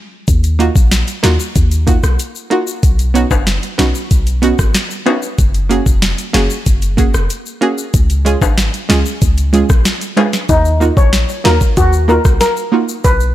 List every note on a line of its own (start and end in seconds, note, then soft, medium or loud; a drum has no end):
0.28 0.70 D#2 loud
0.28 kick loud
0.28 closed hi-hat medium
0.28 shaker medium
0.44 closed hi-hat medium
0.44 shaker medium
0.59 0.72 A#3 medium
0.59 0.72 D#4 medium
0.59 0.73 F4 medium
0.59 0.73 F#4 loud
0.59 closed hi-hat medium
0.59 shaker soft
0.76 1.04 A#1 loud
0.76 kick loud
0.76 shaker medium
0.91 snare loud
0.91 closed hi-hat medium
0.91 shaker medium
1.08 closed hi-hat medium
1.08 shaker soft
1.23 1.38 D#2 loud
1.23 1.36 A#3 medium
1.23 1.36 D#4 medium
1.23 1.37 F4 medium
1.23 1.37 F#4 loud
1.23 snare loud
1.23 closed hi-hat medium
1.23 shaker medium
1.40 shaker medium
1.56 1.97 D#2 loud
1.56 kick medium
1.56 closed hi-hat medium
1.56 shaker medium
1.71 closed hi-hat medium
1.71 shaker medium
1.87 2.00 A#3 medium
1.87 2.00 D#4 medium
1.87 2.00 F4 medium
1.87 2.01 F#4 loud
1.87 kick medium
1.87 closed hi-hat medium
1.87 shaker soft
2.03 2.17 B1 medium
2.03 cross-stick medium
2.03 shaker medium
2.19 closed hi-hat medium
2.19 shaker medium
2.35 shaker medium
2.50 2.64 A#3 medium
2.50 2.64 D#4 medium
2.50 2.64 F4 medium
2.50 2.65 F#4 loud
2.50 closed hi-hat medium
2.67 shaker medium
2.83 3.25 B1 loud
2.83 kick loud
2.83 closed hi-hat medium
2.83 shaker medium
2.99 closed hi-hat medium
2.99 shaker soft
3.14 3.27 B3 medium
3.14 3.28 C#4 medium
3.14 3.28 D#4 medium
3.14 3.28 F#4 loud
3.14 closed hi-hat medium
3.14 shaker soft
3.31 3.59 F#1 medium
3.31 kick loud
3.31 high timbale medium
3.31 shaker medium
3.47 snare loud
3.47 closed hi-hat medium
3.47 shaker medium
3.63 closed hi-hat medium
3.63 shaker soft
3.78 3.93 B1 medium
3.78 3.91 B3 medium
3.78 3.92 C#4 medium
3.78 3.92 D#4 medium
3.78 3.92 F#4 loud
3.78 snare loud
3.78 closed hi-hat medium
3.78 shaker medium
3.95 shaker medium
4.11 4.53 B1 medium
4.11 kick medium
4.11 closed hi-hat medium
4.11 shaker medium
4.27 closed hi-hat medium
4.27 shaker medium
4.42 4.55 B3 medium
4.42 4.55 C#4 medium
4.42 4.56 D#4 medium
4.42 4.56 F#4 loud
4.42 closed hi-hat medium
4.42 shaker soft
4.59 4.73 G#1 medium
4.59 kick medium
4.59 cross-stick medium
4.59 shaker medium
4.74 snare loud
4.74 closed hi-hat medium
4.74 shaker medium
4.91 shaker medium
5.06 5.19 B3 medium
5.06 5.19 C#4 medium
5.06 5.20 D#4 medium
5.06 5.20 F#4 loud
5.06 closed hi-hat medium
5.06 high timbale medium
5.22 shaker medium
5.38 5.80 F#1 loud
5.38 kick loud
5.38 closed hi-hat medium
5.38 shaker medium
5.54 closed hi-hat medium
5.54 shaker soft
5.69 5.83 A#3 medium
5.69 5.83 C#4 medium
5.69 5.83 F#4 medium
5.69 5.84 G#4 loud
5.69 closed hi-hat medium
5.69 shaker soft
5.86 6.14 F1 medium
5.86 kick medium
5.86 shaker medium
6.02 snare loud
6.02 closed hi-hat medium
6.02 shaker medium
6.18 closed hi-hat medium
6.18 shaker soft
6.33 6.48 F#1 loud
6.33 6.47 A#3 medium
6.33 6.47 C#4 medium
6.33 6.47 F#4 medium
6.33 6.47 G#4 loud
6.33 snare loud
6.33 closed hi-hat medium
6.33 shaker medium
6.50 shaker medium
6.66 7.08 F#1 loud
6.66 kick medium
6.66 closed hi-hat medium
6.66 shaker medium
6.82 closed hi-hat medium
6.82 shaker medium
6.97 7.10 A#3 medium
6.97 7.11 C#4 medium
6.97 7.11 F#4 medium
6.97 7.11 G#4 loud
6.97 kick loud
6.97 closed hi-hat medium
6.97 shaker soft
7.14 7.28 F1 medium
7.14 cross-stick medium
7.14 shaker medium
7.30 closed hi-hat medium
7.30 shaker medium
7.46 shaker medium
7.61 7.74 A#3 medium
7.61 7.75 C#4 medium
7.61 7.75 F#4 medium
7.61 7.75 G#4 loud
7.61 closed hi-hat medium
7.78 shaker medium
7.94 8.36 C#2 loud
7.94 kick loud
7.94 closed hi-hat medium
7.94 shaker medium
8.10 closed hi-hat medium
8.10 shaker medium
8.25 8.38 G#3 medium
8.25 8.38 C#4 medium
8.25 8.39 F4 medium
8.25 8.39 G#4 loud
8.25 closed hi-hat medium
8.25 shaker soft
8.42 8.70 G#1 medium
8.42 kick medium
8.42 high timbale medium
8.42 shaker medium
8.58 snare loud
8.58 closed hi-hat medium
8.58 shaker medium
8.74 closed hi-hat medium
8.74 shaker soft
8.89 9.04 C#2 medium
8.89 9.02 G#3 medium
8.89 9.02 C#4 medium
8.89 9.03 F4 medium
8.89 9.03 G#4 loud
8.89 snare loud
8.89 closed hi-hat medium
8.89 shaker medium
9.06 shaker medium
9.22 9.63 C#2 loud
9.22 kick medium
9.22 closed hi-hat medium
9.22 shaker medium
9.38 closed hi-hat medium
9.38 shaker medium
9.53 9.66 G#3 medium
9.53 9.66 C#4 medium
9.53 9.66 F4 medium
9.53 9.67 G#4 loud
9.53 closed hi-hat medium
9.53 shaker soft
9.69 9.84 A#1 medium
9.69 kick medium
9.69 cross-stick medium
9.69 shaker medium
9.85 snare loud
9.85 closed hi-hat medium
9.85 shaker medium
10.01 closed hi-hat medium
10.01 shaker medium
10.16 10.30 G#3 medium
10.16 10.30 C#4 medium
10.16 10.30 F4 medium
10.16 10.31 G#4 medium
10.16 closed hi-hat medium
10.16 high timbale medium
10.33 snare medium
10.33 shaker medium
10.49 10.91 D#2 loud
10.49 10.59 D#4 loud
10.49 kick loud
10.49 closed hi-hat medium
10.49 shaker medium
10.65 shaker medium
10.80 10.93 A#3 medium
10.80 10.94 D#4 medium
10.80 10.94 F4 medium
10.80 10.94 F#4 medium
10.80 shaker soft
10.97 11.25 A#1 loud
10.97 11.07 C#5 medium
10.97 kick loud
10.97 shaker medium
11.13 snare loud
11.13 closed hi-hat medium
11.13 shaker medium
11.29 shaker soft
11.44 11.59 D#2 medium
11.44 11.57 A#3 medium
11.44 11.58 D#4 medium
11.44 11.58 F4 medium
11.44 11.58 F#4 medium
11.44 11.55 A#4 medium
11.44 snare loud
11.61 kick medium
11.61 shaker medium
11.77 12.19 D#2 loud
11.77 11.87 F#4 medium
11.77 kick medium
11.77 closed hi-hat medium
11.77 shaker medium
11.93 shaker medium
12.08 12.21 A#3 medium
12.08 12.21 D#4 medium
12.08 12.22 F4 medium
12.08 12.22 F#4 medium
12.08 12.18 A#4 medium
12.08 shaker soft
12.25 12.39 B1 medium
12.25 kick medium
12.25 cross-stick medium
12.25 shaker medium
12.41 12.86 A#4 medium
12.41 snare medium
12.41 closed hi-hat medium
12.41 shaker medium
12.57 shaker medium
12.72 12.85 A#3 medium
12.72 12.85 D#4 medium
12.72 12.86 F4 medium
12.72 12.86 F#4 medium
12.89 shaker medium
13.04 13.35 B1 loud
13.04 13.14 B4 loud
13.04 kick loud
13.04 closed hi-hat medium
13.04 shaker medium
13.20 shaker medium